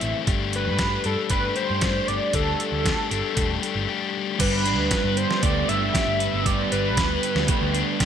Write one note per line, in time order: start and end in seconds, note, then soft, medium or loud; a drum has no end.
0.00 0.12 A1 medium
0.00 0.25 E3 medium
0.00 0.27 A3 medium
0.00 0.26 C4 medium
0.00 0.26 E4 medium
0.00 0.14 E5 loud
0.00 closed hi-hat medium
0.27 0.69 G1 loud
0.27 0.78 G3 medium
0.27 0.79 A3 medium
0.27 0.80 D4 medium
0.27 0.80 G4 loud
0.27 kick loud
0.27 closed hi-hat medium
0.53 1.03 B4 medium
0.53 closed hi-hat medium
0.67 0.96 G2 medium
0.79 1.30 G3 medium
0.79 1.06 A3 medium
0.79 1.05 D4 medium
0.79 1.04 G4 medium
0.79 kick medium
0.79 snare loud
0.79 closed hi-hat medium
1.04 1.15 G2 loud
1.04 1.31 A3 medium
1.04 1.31 D4 medium
1.04 1.32 G4 medium
1.04 1.17 A4 medium
1.04 closed hi-hat medium
1.30 1.50 G1 medium
1.30 1.81 G3 medium
1.30 1.57 A3 medium
1.30 1.57 D4 loud
1.30 1.55 G4 loud
1.30 1.57 B4 medium
1.30 kick loud
1.30 closed hi-hat medium
1.56 1.82 A3 medium
1.56 1.82 D4 medium
1.56 1.83 G4 medium
1.56 2.09 C5 loud
1.56 closed hi-hat medium
1.70 1.99 G2 medium
1.81 2.32 G3 medium
1.81 2.32 A3 medium
1.81 2.33 D4 medium
1.81 2.33 G4 medium
1.81 kick loud
1.81 snare loud
1.81 closed hi-hat medium
2.08 2.18 G1 medium
2.08 2.36 D5 loud
2.08 closed hi-hat medium
2.33 2.53 D2 medium
2.33 2.84 G3 medium
2.33 2.84 A3 medium
2.33 2.85 D4 loud
2.33 2.85 G4 medium
2.33 3.89 A4 medium
2.33 kick loud
2.33 closed hi-hat medium
2.60 closed hi-hat medium
2.72 2.92 D2 medium
2.85 3.34 G3 medium
2.85 3.11 A3 medium
2.85 3.10 D4 medium
2.85 3.09 G4 medium
2.85 kick loud
2.85 snare loud
2.85 closed hi-hat medium
3.10 3.21 G1 medium
3.10 3.34 A3 soft
3.10 3.35 D4 medium
3.10 3.36 G4 medium
3.10 closed hi-hat medium
3.35 3.57 E1 medium
3.35 3.87 G3 loud
3.35 3.62 A3 medium
3.35 3.62 D4 medium
3.35 3.60 G4 medium
3.35 kick loud
3.35 closed hi-hat medium
3.62 3.87 A3 medium
3.62 3.88 D4 medium
3.62 3.88 G4 medium
3.62 closed hi-hat medium
3.75 3.85 G1 medium
3.88 4.38 G3 medium
3.88 4.38 A3 medium
3.88 4.39 D4 medium
3.88 4.39 G4 medium
4.39 4.78 G1 loud
4.39 5.41 G2 medium
4.39 5.41 D3 medium
4.39 6.45 G3 medium
4.39 5.43 G3 loud
4.39 5.43 B3 medium
4.39 5.44 D4 medium
4.39 5.45 G4 loud
4.39 5.19 B4 medium
4.39 kick loud
4.39 closed hi-hat medium
4.39 crash loud
4.65 5.67 D4 medium
4.65 closed hi-hat medium
4.78 4.88 D2 medium
4.90 6.18 B4 medium
4.90 kick loud
4.90 snare loud
4.90 closed hi-hat medium
5.04 5.24 G2 medium
5.16 5.93 G4 medium
5.16 5.42 C5 medium
5.16 closed hi-hat medium
5.31 snare medium
5.42 5.63 D2 loud
5.42 6.42 G2 medium
5.42 6.43 D3 medium
5.42 6.45 G3 medium
5.42 6.72 A3 medium
5.42 6.45 B3 medium
5.42 6.46 D4 medium
5.42 6.47 G4 medium
5.42 5.70 D5 loud
5.42 kick loud
5.42 closed hi-hat medium
5.68 5.89 G1 medium
5.68 6.70 D4 medium
5.68 6.48 E5 loud
5.68 closed hi-hat medium
5.93 7.23 G4 medium
5.93 kick loud
5.93 snare loud
5.93 closed hi-hat medium
6.07 6.27 G1 medium
6.20 6.96 B4 medium
6.20 closed hi-hat medium
6.34 6.63 G1 medium
6.44 7.46 G2 medium
6.44 7.47 D3 medium
6.44 8.05 G3 medium
6.44 7.49 G3 medium
6.44 7.48 B3 medium
6.44 7.48 D4 medium
6.44 7.51 G4 loud
6.44 6.71 D5 medium
6.44 kick loud
6.44 closed hi-hat loud
6.72 6.97 G1 medium
6.72 7.73 D4 medium
6.72 7.71 B4 medium
6.72 closed hi-hat medium
6.97 7.17 D2 medium
6.97 8.05 B4 medium
6.97 kick loud
6.97 snare loud
6.97 closed hi-hat loud
7.23 8.00 G4 medium
7.23 closed hi-hat medium
7.35 7.46 D2 medium
7.35 snare medium
7.47 8.05 G2 medium
7.47 8.05 D3 medium
7.47 8.05 G3 medium
7.47 8.05 A3 medium
7.47 8.05 B3 medium
7.47 8.05 D4 medium
7.47 8.05 G4 medium
7.47 kick loud
7.47 closed hi-hat loud
7.61 7.81 D2 loud
7.74 8.05 D4 medium
7.74 closed hi-hat medium
8.00 8.05 E1 medium
8.00 8.05 G4 medium
8.00 kick loud
8.00 snare loud
8.00 closed hi-hat loud